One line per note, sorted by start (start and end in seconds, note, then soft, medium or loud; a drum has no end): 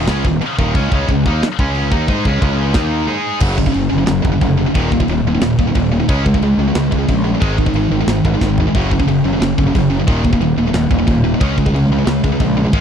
0.07 0.23 C#2 loud
0.07 0.24 C#3 medium
0.07 0.24 G#3 medium
0.07 0.25 C#4 loud
0.07 snare loud
0.07 crash medium
0.25 0.40 D#1 medium
0.25 0.39 D#2 medium
0.25 0.39 A#2 medium
0.25 kick loud
0.41 muted fingered electric bass stroke soft
0.41 muted distorted electric guitar stroke medium
0.41 crash medium
0.59 0.74 D#1 loud
0.59 0.75 D#2 medium
0.59 0.75 A#2 loud
0.59 0.75 D#3 loud
0.59 kick loud
0.74 0.91 C#2 loud
0.74 0.91 C#3 loud
0.74 0.91 G#3 loud
0.74 0.91 C#4 loud
0.74 kick loud
0.74 crash medium
0.92 1.07 C#2 loud
0.92 1.08 C#3 medium
0.92 1.09 G#3 medium
0.92 1.09 C#4 medium
0.92 kick loud
1.08 1.24 C#2 medium
1.08 1.22 C#3 medium
1.08 1.22 G#3 medium
1.08 kick medium
1.08 crash medium
1.26 1.41 D#2 loud
1.26 1.42 D#3 loud
1.26 1.42 A#3 loud
1.26 1.42 D#4 loud
1.26 kick loud
1.43 muted fingered electric bass stroke soft
1.43 muted distorted electric guitar stroke medium
1.43 snare loud
1.43 crash medium
1.59 1.89 C#2 loud
1.59 1.91 C#3 medium
1.59 1.91 G#3 medium
1.59 1.92 C#4 loud
1.59 kick loud
1.75 crash medium
1.91 2.07 D#2 medium
1.91 2.07 D#3 medium
1.91 2.08 A#3 loud
1.91 2.07 D#4 medium
1.91 kick loud
2.08 2.24 G#2 loud
2.08 2.24 G#3 loud
2.08 2.25 D#4 loud
2.08 2.25 G#4 loud
2.08 kick loud
2.08 crash medium
2.25 2.41 C#2 loud
2.25 2.40 C#3 medium
2.25 2.41 G#3 loud
2.25 2.41 C#4 loud
2.25 kick loud
2.41 2.73 C#2 loud
2.41 2.73 C#3 medium
2.41 2.74 G#3 medium
2.41 2.74 C#4 loud
2.41 kick loud
2.41 crash medium
2.74 3.06 D#2 medium
2.74 3.07 D#3 medium
2.74 3.07 A#3 loud
2.74 3.06 D#4 loud
2.74 kick loud
2.74 snare loud
2.74 crash medium
3.07 3.40 G#3 medium
3.07 3.40 D#4 loud
3.07 3.41 G#4 loud
3.40 3.67 F#1 loud
3.40 3.56 F#2 medium
3.40 3.56 C#3 loud
3.40 3.57 F#3 loud
3.40 kick loud
3.40 crash loud
3.40 crash medium
3.58 3.66 F#2 medium
3.58 3.66 C#3 medium
3.58 kick medium
3.66 3.71 F#2 medium
3.66 3.72 C#3 medium
3.66 kick medium
3.72 3.88 F#1 loud
3.72 3.88 F#2 medium
3.72 3.89 C#3 medium
3.72 crash medium
3.90 4.04 F#1 medium
3.90 3.97 F#2 medium
3.90 3.97 C#3 medium
3.98 4.05 F#2 medium
3.98 4.05 C#3 medium
4.06 4.21 F#1 loud
4.06 4.22 F#2 medium
4.06 4.21 C#3 medium
4.06 snare loud
4.06 crash medium
4.22 4.37 F#1 loud
4.22 4.31 F#2 medium
4.22 4.31 C#3 medium
4.22 kick medium
4.32 4.40 F#2 medium
4.32 4.41 C#3 medium
4.41 4.67 F1 loud
4.41 4.56 F#2 medium
4.41 4.57 C#3 medium
4.41 kick medium
4.41 crash medium
4.58 4.66 F#2 medium
4.58 4.65 C#3 medium
4.67 4.74 F#2 medium
4.67 4.74 C#3 medium
4.74 5.01 D#1 loud
4.74 4.90 D#2 loud
4.74 4.90 A#2 loud
4.74 4.91 D#3 loud
4.74 kick loud
4.74 crash medium
4.91 4.99 D#2 medium
4.91 4.99 A#2 medium
4.91 kick medium
5.00 5.08 D#2 medium
5.00 5.08 A#2 medium
5.00 kick medium
5.08 5.21 D#1 loud
5.08 5.24 D#2 medium
5.08 5.24 A#2 medium
5.08 crash medium
5.25 5.38 D#1 medium
5.25 5.33 D#2 medium
5.25 5.34 A#2 medium
5.35 5.40 D#2 medium
5.35 5.41 A#2 medium
5.41 5.54 D#1 medium
5.41 5.56 D#2 medium
5.41 5.57 A#2 medium
5.41 snare loud
5.41 crash medium
5.58 5.71 D#1 loud
5.58 5.66 D#2 medium
5.58 5.66 A#2 medium
5.58 kick medium
5.67 5.74 D#2 medium
5.67 5.75 A#2 medium
5.75 6.01 D#1 medium
5.75 5.90 D#2 medium
5.75 5.90 A#2 medium
5.75 kick medium
5.75 crash medium
5.91 5.98 D#2 medium
5.91 5.98 A#2 medium
6.00 6.08 D#2 medium
6.00 6.08 A#2 medium
6.09 6.34 C#2 loud
6.09 6.24 C#3 loud
6.09 6.24 G#3 loud
6.09 6.24 C#4 loud
6.09 kick loud
6.09 crash medium
6.25 6.33 C#3 medium
6.25 6.33 G#3 medium
6.25 kick medium
6.34 6.42 C#3 medium
6.34 6.42 G#3 medium
6.34 kick medium
6.41 6.54 C#2 loud
6.41 6.57 C#3 medium
6.41 6.57 G#3 loud
6.41 crash medium
6.57 6.71 C#2 medium
6.57 6.67 C#3 medium
6.57 6.67 G#3 medium
6.68 6.75 C#3 medium
6.68 6.75 G#3 medium
6.75 6.88 C#2 loud
6.75 6.90 C#3 medium
6.75 6.90 G#3 medium
6.75 snare loud
6.75 crash medium
6.92 7.05 C#2 loud
6.92 6.98 C#3 medium
6.92 6.97 G#3 medium
6.92 kick medium
6.99 7.08 C#3 medium
6.99 7.07 G#3 medium
7.09 7.34 A#1 loud
7.09 7.23 C#3 medium
7.09 7.24 G#3 medium
7.09 kick medium
7.09 crash medium
7.25 7.34 C#3 medium
7.25 7.33 G#3 medium
7.35 7.40 C#3 medium
7.35 7.40 G#3 medium
7.40 7.67 G#1 loud
7.40 7.56 G#2 medium
7.40 7.56 D#3 loud
7.40 7.57 G#3 loud
7.40 kick loud
7.40 crash medium
7.58 7.65 G#2 medium
7.58 7.65 D#3 medium
7.58 kick medium
7.66 7.74 G#2 medium
7.66 7.74 D#3 medium
7.66 kick loud
7.73 7.87 G#1 loud
7.73 7.90 G#2 medium
7.73 7.90 D#3 medium
7.73 crash medium
7.90 8.04 G#1 medium
7.90 8.00 G#2 medium
7.90 7.99 D#3 medium
8.00 8.08 G#2 medium
8.00 8.08 D#3 medium
8.07 8.20 G#1 medium
8.07 8.23 G#2 medium
8.07 8.23 D#3 medium
8.07 snare loud
8.07 crash medium
8.25 8.37 G#1 loud
8.25 8.34 G#2 medium
8.25 8.33 D#3 medium
8.25 kick medium
8.34 8.42 G#2 medium
8.34 8.42 D#3 medium
8.41 8.67 G#1 loud
8.41 8.57 G#2 medium
8.41 8.57 D#3 medium
8.41 kick medium
8.41 snare medium
8.58 8.67 G#2 medium
8.58 8.66 D#3 medium
8.58 floor tom loud
8.67 8.75 G#2 medium
8.67 8.75 D#3 medium
8.74 9.00 F#1 loud
8.74 8.90 F#2 medium
8.74 8.90 C#3 loud
8.74 8.91 F#3 medium
8.74 kick loud
8.74 crash medium
8.91 8.99 F#2 medium
8.91 8.98 C#3 medium
8.91 kick medium
9.00 9.06 F#2 medium
9.00 9.07 C#3 medium
9.00 kick medium
9.07 9.20 F#1 loud
9.07 9.22 F#2 medium
9.07 9.23 C#3 medium
9.07 crash medium
9.25 9.37 F#1 medium
9.25 9.33 F#2 medium
9.25 9.32 C#3 medium
9.33 9.39 F#2 medium
9.33 9.39 C#3 medium
9.40 9.53 F#1 medium
9.40 9.55 F#2 medium
9.40 9.55 C#3 medium
9.40 snare loud
9.40 crash medium
9.58 9.71 F#1 loud
9.58 9.66 F#2 medium
9.58 9.65 C#3 medium
9.58 kick loud
9.67 9.73 F#2 medium
9.67 9.73 C#3 medium
9.75 10.00 F#1 loud
9.75 9.89 F#2 medium
9.75 9.88 C#3 medium
9.75 kick medium
9.75 crash medium
9.90 9.98 F#2 medium
9.90 9.98 C#3 medium
9.99 10.06 F#2 medium
9.99 10.07 C#3 medium
10.07 10.33 D#1 loud
10.07 10.23 D#2 medium
10.07 10.22 A#2 medium
10.07 10.23 D#3 loud
10.07 kick loud
10.07 crash medium
10.23 10.32 D#2 medium
10.23 10.32 A#2 medium
10.23 kick medium
10.33 10.40 D#2 medium
10.33 10.40 A#2 medium
10.33 kick medium
10.40 10.53 D#1 loud
10.40 10.56 D#2 medium
10.40 10.56 A#2 medium
10.40 crash medium
10.58 10.70 D#1 medium
10.58 10.66 D#2 medium
10.58 10.66 A#2 medium
10.67 10.73 D#2 medium
10.67 10.73 A#2 medium
10.74 10.86 D#1 loud
10.74 10.89 D#2 medium
10.74 10.88 A#2 medium
10.74 snare loud
10.74 crash medium
10.91 11.03 D#1 loud
10.91 10.98 D#2 medium
10.91 10.97 A#2 medium
10.91 kick medium
10.99 11.05 D#2 medium
10.99 11.05 A#2 medium
11.07 11.33 D#1 medium
11.07 11.22 D#2 medium
11.07 11.22 A#2 medium
11.07 kick medium
11.07 crash medium
11.24 11.32 D#2 medium
11.24 11.32 A#2 medium
11.34 11.41 D#2 medium
11.34 11.40 A#2 medium
11.40 11.66 C#2 loud
11.40 11.56 C#3 loud
11.40 11.56 G#3 loud
11.40 11.56 C#4 loud
11.40 kick loud
11.40 crash medium
11.57 11.65 C#3 medium
11.57 11.65 G#3 medium
11.57 kick medium
11.66 11.74 C#3 medium
11.66 11.73 G#3 medium
11.66 kick medium
11.72 11.85 C#2 loud
11.72 11.89 C#3 medium
11.72 11.89 G#3 medium
11.72 crash medium
11.89 12.02 C#2 medium
11.89 11.98 C#3 medium
11.89 11.97 G#3 medium
11.99 12.05 C#3 medium
11.99 12.04 G#3 medium
12.06 12.19 C#2 loud
12.06 12.21 C#3 medium
12.06 12.21 G#3 medium
12.06 snare loud
12.06 crash medium
12.24 12.37 C#2 medium
12.24 12.31 C#3 medium
12.24 12.31 G#3 medium
12.24 kick loud
12.32 12.40 C#3 medium
12.32 12.40 G#3 medium
12.40 12.66 A#1 medium
12.40 12.55 C#3 medium
12.40 12.55 G#3 medium
12.40 kick loud
12.40 crash medium
12.57 12.65 C#3 medium
12.57 12.63 G#3 medium
12.65 12.73 C#3 medium
12.65 12.73 G#3 loud
12.73 12.81 G#1 loud
12.73 12.81 G#2 loud
12.73 12.81 D#3 loud
12.73 12.81 G#3 loud
12.73 kick loud
12.73 crash medium